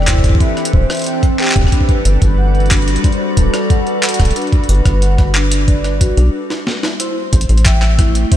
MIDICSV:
0, 0, Header, 1, 6, 480
1, 0, Start_track
1, 0, Tempo, 659341
1, 1254, Time_signature, 4, 2, 24, 8
1, 6093, End_track
2, 0, Start_track
2, 0, Title_t, "Soft synth lead"
2, 0, Program_c, 0, 80
2, 55, Note_on_c, 0, 72, 97
2, 295, Note_on_c, 0, 71, 105
2, 306, Note_off_c, 0, 72, 0
2, 536, Note_on_c, 0, 72, 105
2, 547, Note_off_c, 0, 71, 0
2, 1015, Note_on_c, 0, 67, 90
2, 1026, Note_off_c, 0, 72, 0
2, 1250, Note_off_c, 0, 67, 0
2, 1255, Note_on_c, 0, 71, 109
2, 2215, Note_on_c, 0, 72, 106
2, 2226, Note_off_c, 0, 71, 0
2, 2454, Note_on_c, 0, 69, 101
2, 2464, Note_off_c, 0, 72, 0
2, 3174, Note_on_c, 0, 71, 110
2, 3185, Note_off_c, 0, 69, 0
2, 4130, Note_off_c, 0, 71, 0
2, 4134, Note_on_c, 0, 71, 90
2, 4585, Note_off_c, 0, 71, 0
2, 5095, Note_on_c, 0, 72, 102
2, 5546, Note_off_c, 0, 72, 0
2, 5575, Note_on_c, 0, 76, 117
2, 6026, Note_off_c, 0, 76, 0
2, 6055, Note_on_c, 0, 72, 102
2, 6093, Note_off_c, 0, 72, 0
2, 6093, End_track
3, 0, Start_track
3, 0, Title_t, "Vibraphone"
3, 0, Program_c, 1, 11
3, 54, Note_on_c, 1, 64, 99
3, 159, Note_off_c, 1, 64, 0
3, 174, Note_on_c, 1, 64, 75
3, 244, Note_off_c, 1, 64, 0
3, 294, Note_on_c, 1, 76, 80
3, 364, Note_off_c, 1, 76, 0
3, 534, Note_on_c, 1, 72, 77
3, 604, Note_off_c, 1, 72, 0
3, 654, Note_on_c, 1, 76, 77
3, 724, Note_off_c, 1, 76, 0
3, 774, Note_on_c, 1, 79, 83
3, 844, Note_off_c, 1, 79, 0
3, 894, Note_on_c, 1, 72, 80
3, 999, Note_off_c, 1, 72, 0
3, 1014, Note_on_c, 1, 79, 105
3, 1084, Note_off_c, 1, 79, 0
3, 1254, Note_on_c, 1, 62, 103
3, 1324, Note_off_c, 1, 62, 0
3, 1734, Note_on_c, 1, 78, 82
3, 1804, Note_off_c, 1, 78, 0
3, 1974, Note_on_c, 1, 62, 99
3, 2079, Note_off_c, 1, 62, 0
3, 2094, Note_on_c, 1, 62, 76
3, 2164, Note_off_c, 1, 62, 0
3, 2214, Note_on_c, 1, 74, 79
3, 2284, Note_off_c, 1, 74, 0
3, 2454, Note_on_c, 1, 71, 78
3, 2524, Note_off_c, 1, 71, 0
3, 2574, Note_on_c, 1, 74, 78
3, 2644, Note_off_c, 1, 74, 0
3, 2694, Note_on_c, 1, 78, 85
3, 2764, Note_off_c, 1, 78, 0
3, 2814, Note_on_c, 1, 71, 77
3, 2919, Note_off_c, 1, 71, 0
3, 2934, Note_on_c, 1, 78, 105
3, 3004, Note_off_c, 1, 78, 0
3, 3174, Note_on_c, 1, 62, 98
3, 3244, Note_off_c, 1, 62, 0
3, 3655, Note_on_c, 1, 78, 82
3, 3725, Note_off_c, 1, 78, 0
3, 3894, Note_on_c, 1, 62, 101
3, 3999, Note_off_c, 1, 62, 0
3, 4015, Note_on_c, 1, 62, 79
3, 4085, Note_off_c, 1, 62, 0
3, 4135, Note_on_c, 1, 74, 77
3, 4204, Note_off_c, 1, 74, 0
3, 4375, Note_on_c, 1, 66, 104
3, 4444, Note_off_c, 1, 66, 0
3, 4495, Note_on_c, 1, 62, 74
3, 4599, Note_off_c, 1, 62, 0
3, 5095, Note_on_c, 1, 64, 98
3, 5164, Note_off_c, 1, 64, 0
3, 5574, Note_on_c, 1, 79, 81
3, 5644, Note_off_c, 1, 79, 0
3, 5814, Note_on_c, 1, 64, 104
3, 5919, Note_off_c, 1, 64, 0
3, 5934, Note_on_c, 1, 64, 72
3, 6004, Note_off_c, 1, 64, 0
3, 6054, Note_on_c, 1, 76, 77
3, 6093, Note_off_c, 1, 76, 0
3, 6093, End_track
4, 0, Start_track
4, 0, Title_t, "Ambient pad"
4, 0, Program_c, 2, 92
4, 0, Note_on_c, 2, 52, 80
4, 0, Note_on_c, 2, 60, 72
4, 0, Note_on_c, 2, 62, 76
4, 0, Note_on_c, 2, 67, 74
4, 0, Note_on_c, 2, 69, 89
4, 1225, Note_off_c, 2, 52, 0
4, 1225, Note_off_c, 2, 60, 0
4, 1225, Note_off_c, 2, 67, 0
4, 1254, Note_on_c, 2, 55, 80
4, 1254, Note_on_c, 2, 66, 74
4, 1254, Note_on_c, 2, 74, 91
4, 4585, Note_off_c, 2, 55, 0
4, 4585, Note_off_c, 2, 62, 0
4, 4585, Note_off_c, 2, 66, 0
4, 4585, Note_off_c, 2, 69, 0
4, 4585, Note_off_c, 2, 74, 0
4, 5094, Note_on_c, 2, 57, 83
4, 5094, Note_on_c, 2, 60, 73
4, 5095, Note_on_c, 2, 67, 95
4, 6093, Note_off_c, 2, 57, 0
4, 6093, Note_off_c, 2, 60, 0
4, 6093, Note_off_c, 2, 67, 0
4, 6093, End_track
5, 0, Start_track
5, 0, Title_t, "Acid bass"
5, 0, Program_c, 3, 38
5, 0, Note_on_c, 3, 28, 85
5, 252, Note_off_c, 3, 28, 0
5, 535, Note_on_c, 3, 26, 91
5, 628, Note_off_c, 3, 26, 0
5, 1135, Note_on_c, 3, 26, 106
5, 1228, Note_off_c, 3, 26, 0
5, 1494, Note_on_c, 3, 31, 99
5, 1588, Note_off_c, 3, 31, 0
5, 1614, Note_on_c, 3, 31, 81
5, 2172, Note_off_c, 3, 31, 0
5, 2454, Note_on_c, 3, 26, 93
5, 2548, Note_off_c, 3, 26, 0
5, 3054, Note_on_c, 3, 26, 102
5, 3148, Note_off_c, 3, 26, 0
5, 3414, Note_on_c, 3, 31, 98
5, 3507, Note_off_c, 3, 31, 0
5, 3534, Note_on_c, 3, 31, 83
5, 4374, Note_on_c, 3, 35, 89
5, 4385, Note_off_c, 3, 31, 0
5, 4468, Note_off_c, 3, 35, 0
5, 4495, Note_on_c, 3, 35, 92
5, 4588, Note_off_c, 3, 35, 0
5, 5335, Note_on_c, 3, 33, 99
5, 5428, Note_off_c, 3, 33, 0
5, 5454, Note_on_c, 3, 33, 84
5, 6012, Note_off_c, 3, 33, 0
5, 6093, End_track
6, 0, Start_track
6, 0, Title_t, "Drums"
6, 15, Note_on_c, 9, 37, 21
6, 54, Note_on_c, 9, 36, 51
6, 55, Note_off_c, 9, 37, 0
6, 55, Note_on_c, 9, 37, 49
6, 55, Note_on_c, 9, 39, 106
6, 55, Note_on_c, 9, 42, 85
6, 94, Note_off_c, 9, 36, 0
6, 94, Note_on_c, 9, 36, 64
6, 95, Note_off_c, 9, 37, 0
6, 95, Note_on_c, 9, 37, 28
6, 128, Note_off_c, 9, 39, 0
6, 128, Note_off_c, 9, 42, 0
6, 134, Note_off_c, 9, 36, 0
6, 134, Note_on_c, 9, 36, 70
6, 135, Note_off_c, 9, 37, 0
6, 135, Note_on_c, 9, 37, 30
6, 175, Note_off_c, 9, 36, 0
6, 175, Note_on_c, 9, 36, 81
6, 175, Note_on_c, 9, 42, 50
6, 208, Note_off_c, 9, 37, 0
6, 214, Note_off_c, 9, 36, 0
6, 214, Note_on_c, 9, 36, 85
6, 248, Note_off_c, 9, 42, 0
6, 255, Note_off_c, 9, 36, 0
6, 255, Note_on_c, 9, 36, 97
6, 295, Note_off_c, 9, 36, 0
6, 295, Note_on_c, 9, 36, 105
6, 295, Note_on_c, 9, 42, 51
6, 367, Note_off_c, 9, 36, 0
6, 368, Note_off_c, 9, 42, 0
6, 415, Note_on_c, 9, 37, 35
6, 415, Note_on_c, 9, 42, 25
6, 475, Note_off_c, 9, 42, 0
6, 475, Note_on_c, 9, 42, 90
6, 487, Note_off_c, 9, 37, 0
6, 534, Note_on_c, 9, 36, 111
6, 547, Note_off_c, 9, 42, 0
6, 607, Note_off_c, 9, 36, 0
6, 654, Note_on_c, 9, 37, 78
6, 654, Note_on_c, 9, 42, 23
6, 672, Note_off_c, 9, 42, 0
6, 672, Note_on_c, 9, 42, 26
6, 689, Note_off_c, 9, 42, 0
6, 689, Note_on_c, 9, 42, 31
6, 706, Note_off_c, 9, 42, 0
6, 706, Note_on_c, 9, 42, 34
6, 723, Note_off_c, 9, 42, 0
6, 723, Note_on_c, 9, 42, 37
6, 727, Note_off_c, 9, 37, 0
6, 740, Note_off_c, 9, 42, 0
6, 740, Note_on_c, 9, 42, 40
6, 757, Note_off_c, 9, 42, 0
6, 757, Note_on_c, 9, 42, 45
6, 775, Note_off_c, 9, 42, 0
6, 775, Note_on_c, 9, 42, 50
6, 847, Note_off_c, 9, 42, 0
6, 894, Note_on_c, 9, 36, 100
6, 895, Note_on_c, 9, 42, 24
6, 967, Note_off_c, 9, 36, 0
6, 967, Note_off_c, 9, 42, 0
6, 1015, Note_on_c, 9, 39, 54
6, 1045, Note_off_c, 9, 39, 0
6, 1045, Note_on_c, 9, 39, 68
6, 1075, Note_off_c, 9, 39, 0
6, 1075, Note_on_c, 9, 39, 79
6, 1104, Note_off_c, 9, 39, 0
6, 1104, Note_on_c, 9, 39, 93
6, 1134, Note_on_c, 9, 37, 22
6, 1134, Note_on_c, 9, 42, 46
6, 1135, Note_on_c, 9, 36, 105
6, 1175, Note_off_c, 9, 37, 0
6, 1175, Note_on_c, 9, 37, 31
6, 1177, Note_off_c, 9, 39, 0
6, 1195, Note_off_c, 9, 36, 0
6, 1195, Note_on_c, 9, 36, 82
6, 1207, Note_off_c, 9, 42, 0
6, 1214, Note_off_c, 9, 37, 0
6, 1214, Note_on_c, 9, 37, 39
6, 1254, Note_off_c, 9, 36, 0
6, 1254, Note_on_c, 9, 36, 74
6, 1254, Note_on_c, 9, 42, 50
6, 1287, Note_off_c, 9, 37, 0
6, 1314, Note_off_c, 9, 36, 0
6, 1314, Note_on_c, 9, 36, 60
6, 1327, Note_off_c, 9, 42, 0
6, 1374, Note_off_c, 9, 36, 0
6, 1374, Note_on_c, 9, 36, 100
6, 1374, Note_on_c, 9, 42, 25
6, 1447, Note_off_c, 9, 36, 0
6, 1447, Note_off_c, 9, 42, 0
6, 1494, Note_on_c, 9, 42, 89
6, 1567, Note_off_c, 9, 42, 0
6, 1614, Note_on_c, 9, 36, 107
6, 1614, Note_on_c, 9, 42, 51
6, 1687, Note_off_c, 9, 36, 0
6, 1687, Note_off_c, 9, 42, 0
6, 1854, Note_on_c, 9, 42, 11
6, 1894, Note_off_c, 9, 42, 0
6, 1894, Note_on_c, 9, 42, 14
6, 1934, Note_off_c, 9, 42, 0
6, 1934, Note_on_c, 9, 42, 16
6, 1974, Note_off_c, 9, 42, 0
6, 1974, Note_on_c, 9, 36, 98
6, 1974, Note_on_c, 9, 37, 52
6, 1974, Note_on_c, 9, 39, 112
6, 1974, Note_on_c, 9, 42, 88
6, 2014, Note_off_c, 9, 42, 0
6, 2014, Note_on_c, 9, 42, 19
6, 2047, Note_off_c, 9, 36, 0
6, 2047, Note_off_c, 9, 37, 0
6, 2047, Note_off_c, 9, 39, 0
6, 2054, Note_off_c, 9, 42, 0
6, 2054, Note_on_c, 9, 42, 22
6, 2094, Note_off_c, 9, 42, 0
6, 2094, Note_on_c, 9, 42, 47
6, 2154, Note_off_c, 9, 42, 0
6, 2154, Note_on_c, 9, 42, 40
6, 2214, Note_off_c, 9, 42, 0
6, 2214, Note_on_c, 9, 42, 51
6, 2215, Note_on_c, 9, 36, 114
6, 2274, Note_off_c, 9, 42, 0
6, 2274, Note_on_c, 9, 42, 27
6, 2287, Note_off_c, 9, 36, 0
6, 2347, Note_off_c, 9, 42, 0
6, 2454, Note_on_c, 9, 42, 87
6, 2455, Note_on_c, 9, 36, 98
6, 2527, Note_off_c, 9, 36, 0
6, 2527, Note_off_c, 9, 42, 0
6, 2574, Note_on_c, 9, 37, 83
6, 2574, Note_on_c, 9, 42, 51
6, 2647, Note_off_c, 9, 37, 0
6, 2647, Note_off_c, 9, 42, 0
6, 2694, Note_on_c, 9, 36, 114
6, 2695, Note_on_c, 9, 42, 51
6, 2767, Note_off_c, 9, 36, 0
6, 2767, Note_off_c, 9, 42, 0
6, 2815, Note_on_c, 9, 42, 25
6, 2888, Note_off_c, 9, 42, 0
6, 2935, Note_on_c, 9, 39, 111
6, 2935, Note_on_c, 9, 42, 87
6, 2975, Note_off_c, 9, 42, 0
6, 2975, Note_on_c, 9, 42, 73
6, 3008, Note_off_c, 9, 39, 0
6, 3015, Note_off_c, 9, 42, 0
6, 3015, Note_on_c, 9, 42, 58
6, 3054, Note_on_c, 9, 36, 97
6, 3055, Note_off_c, 9, 42, 0
6, 3055, Note_on_c, 9, 37, 52
6, 3055, Note_on_c, 9, 42, 49
6, 3095, Note_off_c, 9, 42, 0
6, 3095, Note_on_c, 9, 42, 40
6, 3127, Note_off_c, 9, 36, 0
6, 3128, Note_off_c, 9, 37, 0
6, 3135, Note_off_c, 9, 42, 0
6, 3135, Note_on_c, 9, 42, 32
6, 3175, Note_off_c, 9, 42, 0
6, 3175, Note_on_c, 9, 42, 53
6, 3215, Note_off_c, 9, 42, 0
6, 3215, Note_on_c, 9, 42, 21
6, 3255, Note_off_c, 9, 42, 0
6, 3255, Note_on_c, 9, 42, 18
6, 3294, Note_on_c, 9, 36, 115
6, 3295, Note_off_c, 9, 42, 0
6, 3295, Note_on_c, 9, 42, 25
6, 3367, Note_off_c, 9, 36, 0
6, 3368, Note_off_c, 9, 42, 0
6, 3375, Note_on_c, 9, 42, 21
6, 3415, Note_off_c, 9, 42, 0
6, 3415, Note_on_c, 9, 42, 94
6, 3455, Note_off_c, 9, 42, 0
6, 3455, Note_on_c, 9, 42, 17
6, 3527, Note_off_c, 9, 42, 0
6, 3534, Note_on_c, 9, 36, 96
6, 3535, Note_on_c, 9, 37, 60
6, 3535, Note_on_c, 9, 42, 51
6, 3607, Note_off_c, 9, 36, 0
6, 3607, Note_off_c, 9, 37, 0
6, 3607, Note_off_c, 9, 42, 0
6, 3655, Note_on_c, 9, 42, 53
6, 3728, Note_off_c, 9, 42, 0
6, 3774, Note_on_c, 9, 36, 116
6, 3775, Note_on_c, 9, 37, 39
6, 3775, Note_on_c, 9, 42, 27
6, 3847, Note_off_c, 9, 36, 0
6, 3848, Note_off_c, 9, 37, 0
6, 3848, Note_off_c, 9, 42, 0
6, 3895, Note_on_c, 9, 37, 54
6, 3895, Note_on_c, 9, 39, 115
6, 3967, Note_off_c, 9, 37, 0
6, 3967, Note_off_c, 9, 39, 0
6, 4015, Note_on_c, 9, 42, 95
6, 4088, Note_off_c, 9, 42, 0
6, 4134, Note_on_c, 9, 36, 101
6, 4135, Note_on_c, 9, 42, 54
6, 4207, Note_off_c, 9, 36, 0
6, 4208, Note_off_c, 9, 42, 0
6, 4255, Note_on_c, 9, 37, 38
6, 4255, Note_on_c, 9, 42, 27
6, 4327, Note_off_c, 9, 37, 0
6, 4327, Note_off_c, 9, 42, 0
6, 4374, Note_on_c, 9, 36, 108
6, 4375, Note_on_c, 9, 42, 93
6, 4447, Note_off_c, 9, 36, 0
6, 4448, Note_off_c, 9, 42, 0
6, 4495, Note_on_c, 9, 42, 54
6, 4568, Note_off_c, 9, 42, 0
6, 4735, Note_on_c, 9, 38, 51
6, 4807, Note_off_c, 9, 38, 0
6, 4854, Note_on_c, 9, 38, 79
6, 4927, Note_off_c, 9, 38, 0
6, 4974, Note_on_c, 9, 38, 75
6, 5047, Note_off_c, 9, 38, 0
6, 5094, Note_on_c, 9, 42, 81
6, 5167, Note_off_c, 9, 42, 0
6, 5334, Note_on_c, 9, 36, 102
6, 5334, Note_on_c, 9, 42, 79
6, 5395, Note_off_c, 9, 42, 0
6, 5395, Note_on_c, 9, 42, 66
6, 5407, Note_off_c, 9, 36, 0
6, 5455, Note_off_c, 9, 42, 0
6, 5455, Note_on_c, 9, 42, 54
6, 5515, Note_off_c, 9, 42, 0
6, 5515, Note_on_c, 9, 42, 42
6, 5574, Note_off_c, 9, 42, 0
6, 5574, Note_on_c, 9, 36, 119
6, 5574, Note_on_c, 9, 39, 116
6, 5574, Note_on_c, 9, 42, 84
6, 5647, Note_off_c, 9, 36, 0
6, 5647, Note_off_c, 9, 39, 0
6, 5647, Note_off_c, 9, 42, 0
6, 5694, Note_on_c, 9, 37, 39
6, 5694, Note_on_c, 9, 39, 62
6, 5767, Note_off_c, 9, 37, 0
6, 5767, Note_off_c, 9, 39, 0
6, 5814, Note_on_c, 9, 36, 108
6, 5815, Note_on_c, 9, 37, 52
6, 5815, Note_on_c, 9, 42, 82
6, 5887, Note_off_c, 9, 36, 0
6, 5887, Note_off_c, 9, 37, 0
6, 5887, Note_off_c, 9, 42, 0
6, 5935, Note_on_c, 9, 42, 56
6, 6007, Note_off_c, 9, 42, 0
6, 6054, Note_on_c, 9, 36, 121
6, 6054, Note_on_c, 9, 42, 83
6, 6093, Note_off_c, 9, 36, 0
6, 6093, Note_off_c, 9, 42, 0
6, 6093, End_track
0, 0, End_of_file